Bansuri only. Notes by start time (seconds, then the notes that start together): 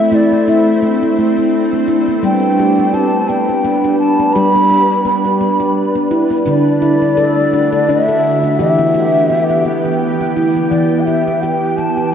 Already playing: E5
0.15 D5
0.49 E5
2.25 G5
2.94 A5
3.29 G5
3.99 A5
4.33 B5
5.06 B5
6.50 D5
7.90 E5
8.62 E5
10.70 D5
11.01 G5
11.06 E5
11.42 G5
11.77 A5